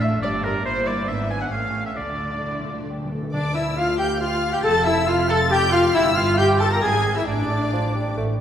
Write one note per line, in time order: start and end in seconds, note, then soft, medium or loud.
0.00 0.21 A1 medium
0.00 0.21 A2 medium
0.00 0.20 A3 medium
0.00 0.20 D4 medium
0.00 0.20 F4 medium
0.00 0.09 E5 medium
0.00 0.22 E5 loud
0.21 0.63 G1 medium
0.21 0.64 G2 medium
0.21 0.65 G3 medium
0.21 0.64 D4 medium
0.21 0.64 F4 medium
0.21 0.45 D5 medium
0.21 0.31 D5 loud
0.44 0.65 A#4 loud
0.44 0.52 A#4 medium
0.64 1.05 G1 medium
0.64 1.05 G2 medium
0.64 1.05 A#3 medium
0.64 1.05 E4 medium
0.64 0.86 C5 loud
0.64 0.89 C5 loud
0.87 1.08 D5 medium
0.87 1.10 D5 medium
1.08 1.52 G#1 medium
1.08 1.53 G#2 medium
1.08 1.52 B3 medium
1.08 1.52 D4 medium
1.08 1.52 E4 medium
1.08 1.30 E5 loud
1.08 1.30 E5 medium
1.30 1.41 G#5 medium
1.30 1.42 G#5 medium
1.41 1.46 F#5 medium
1.41 1.53 F#5 medium
1.52 1.96 A1 medium
1.52 1.97 A2 medium
1.52 1.96 A3 medium
1.52 1.97 C#4 medium
1.52 1.97 G4 medium
1.52 1.86 F5 medium
1.52 1.85 F5 medium
1.86 1.99 E5 medium
1.86 1.97 E5 medium
1.96 3.13 D2 medium
1.96 2.04 D3 soft
1.96 3.14 D3 medium
1.96 3.11 A3 medium
1.96 3.11 D4 medium
1.96 2.38 F4 medium
1.96 2.86 D5 medium
1.96 2.88 D5 medium
2.05 2.11 D3 soft
2.13 2.19 D3 soft
2.20 2.27 D3 soft
2.28 2.35 D3 soft
2.36 2.42 D3 soft
2.42 2.49 D3 soft
2.42 2.64 E4 medium
2.51 2.58 D3 soft
2.59 2.66 D3 medium
2.65 2.73 D3 medium
2.65 2.88 F4 soft
2.74 2.81 D3 medium
2.82 2.88 D3 medium
2.89 2.96 D3 medium
2.89 3.11 G4 medium
2.98 3.04 D3 medium
3.05 3.12 D3 medium
3.11 3.20 D3 medium
3.11 3.33 A4 medium
3.21 3.28 D3 loud
3.33 4.60 D2 medium
3.33 3.95 D3 medium
3.33 3.54 D4 medium
3.33 3.54 D5 medium
3.33 3.54 D6 medium
3.55 3.76 E4 medium
3.55 3.65 E4 medium
3.55 3.76 E4 medium
3.55 3.77 E4 medium
3.55 3.76 E5 medium
3.55 3.63 E5 medium
3.55 3.62 E5 medium
3.55 3.77 E6 medium
3.76 3.86 F4 medium
3.76 3.87 F4 medium
3.76 3.99 F4 medium
3.76 3.98 F5 medium
3.76 3.87 F5 medium
3.76 3.98 F5 medium
3.76 3.99 F6 loud
3.98 4.08 G4 medium
3.98 4.21 G4 medium
3.98 4.07 G4 medium
3.98 4.20 G4 medium
3.98 4.06 G5 medium
3.98 4.05 G5 medium
3.98 4.20 G5 medium
3.98 4.20 G6 loud
4.20 4.53 F4 medium
4.20 4.52 F4 medium
4.20 4.53 F4 medium
4.20 4.54 F4 medium
4.20 4.52 F5 medium
4.20 4.55 F5 medium
4.20 4.56 F5 medium
4.20 4.53 F6 loud
4.52 4.65 G4 medium
4.52 4.64 G4 medium
4.52 4.64 G5 medium
4.52 4.63 G5 medium
4.52 4.66 G5 medium
4.52 4.65 G6 medium
4.63 5.92 F1 medium
4.63 5.92 F2 medium
4.63 4.85 A4 loud
4.63 4.86 A4 loud
4.63 4.74 A4 loud
4.63 4.86 A4 loud
4.63 4.87 A5 loud
4.63 4.86 A5 loud
4.63 4.86 A6 loud
4.85 5.08 E4 medium
4.85 5.07 E4 loud
4.85 4.96 E4 medium
4.85 5.08 E4 medium
4.85 5.07 E5 medium
4.85 5.08 E5 medium
4.85 5.10 E5 medium
4.85 5.08 E6 loud
5.07 5.28 F4 medium
5.07 5.17 F4 medium
5.07 5.29 F4 medium
5.07 5.30 F5 medium
5.07 5.15 F5 medium
5.07 5.29 F5 medium
5.07 5.30 F6 loud
5.28 5.51 A4 loud
5.28 5.39 A4 loud
5.28 5.52 A4 loud
5.28 5.52 A5 loud
5.28 5.38 A5 loud
5.28 5.36 A5 loud
5.28 5.51 A6 loud
5.50 5.71 G4 loud
5.50 5.72 G4 loud
5.50 5.73 G4 loud
5.50 5.74 G5 loud
5.50 5.57 G5 loud
5.50 5.73 G5 loud
5.50 5.73 G6 loud
5.72 5.82 F4 loud
5.72 5.95 F4 loud
5.72 5.96 F5 loud
5.72 5.95 F5 loud
5.72 5.95 F6 loud
5.94 6.79 G1 medium
5.94 6.79 G2 medium
5.94 6.18 E4 loud
5.94 6.02 E4 loud
5.94 6.05 E4 loud
5.94 6.17 E4 loud
5.94 6.17 E5 loud
5.94 6.16 E5 loud
5.94 6.03 E5 loud
5.94 6.17 E6 loud
6.16 6.37 F4 loud
6.16 6.38 F4 loud
6.16 6.40 F4 loud
6.16 6.39 F4 loud
6.16 6.39 F5 loud
6.16 6.37 F5 loud
6.16 6.39 F5 loud
6.16 6.38 F6 loud
6.38 6.60 G4 loud
6.38 6.48 G4 loud
6.38 6.60 G4 loud
6.38 6.61 G4 loud
6.38 6.62 G5 loud
6.38 6.59 G5 loud
6.38 6.60 G5 loud
6.38 6.46 G6 loud
6.60 6.71 A4 medium
6.60 6.70 A4 loud
6.60 6.71 A4 loud
6.60 6.72 A4 loud
6.60 6.65 A5 loud
6.60 6.70 A5 loud
6.60 6.71 A5 loud
6.60 6.71 A6 loud
6.70 6.76 A#4 medium
6.70 6.82 A#4 medium
6.70 6.84 A#4 medium
6.70 6.83 A#4 medium
6.70 6.76 A#5 medium
6.70 6.82 A#5 medium
6.70 6.82 A#6 loud
6.82 7.27 G#1 medium
6.82 7.27 G#2 medium
6.82 7.17 G#4 medium
6.82 7.16 G#4 loud
6.82 7.15 G#4 loud
6.82 7.17 G#4 loud
6.82 7.15 G#5 loud
6.82 7.16 G#5 medium
6.82 7.16 G#6 loud
7.15 7.28 E4 medium
7.15 7.21 E4 medium
7.15 7.27 E4 medium
7.15 7.28 E4 medium
7.15 7.27 E5 medium
7.15 7.27 E6 medium
7.27 8.16 A1 medium
7.27 8.16 A2 medium
7.27 8.17 D4 medium
7.27 8.16 D4 medium
7.27 8.17 D5 medium
7.27 8.16 D5 medium
7.27 8.16 D6 medium
7.73 7.94 F3 medium
7.95 8.17 G3 medium
8.17 8.41 A1 medium
8.17 8.41 A2 medium
8.17 8.28 A3 medium